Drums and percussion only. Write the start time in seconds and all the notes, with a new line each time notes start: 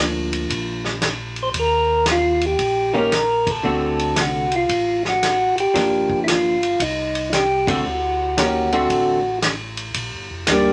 0.33 ride
0.50 kick, ride
0.85 snare
1.02 snare, hi-hat pedal, ride
1.36 ride
1.54 kick, ride
2.06 snare, hi-hat pedal, ride
2.41 ride
2.59 kick, ride
3.12 snare, hi-hat pedal, ride
3.47 kick, ride
3.99 ride
4.16 snare, hi-hat pedal, ride
4.52 ride
4.69 kick, ride
5.05 snare
5.23 snare, hi-hat pedal, ride
5.58 ride
5.75 kick, snare, ride
6.09 kick
6.28 snare, hi-hat pedal, ride
6.63 ride
6.80 kick, ride
7.15 ride
7.33 snare, hi-hat pedal, ride
7.67 kick, ride
8.38 snare, hi-hat pedal, ride
8.72 ride
8.90 kick, ride
9.42 snare, hi-hat pedal, ride
9.77 ride
9.94 kick, ride
10.47 kick, snare, hi-hat pedal, ride